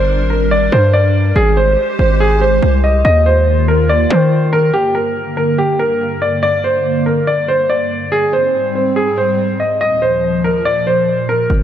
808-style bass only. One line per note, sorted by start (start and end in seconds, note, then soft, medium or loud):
0.00 0.22 G1 loud
0.20 0.70 G#1 loud
0.72 1.33 G2 loud
1.36 1.76 G#1 loud
1.99 2.60 G#1 loud
2.62 3.03 C2 loud
3.05 4.06 D#2 loud
4.10 4.71 D#3 loud
11.50 11.63 G1 loud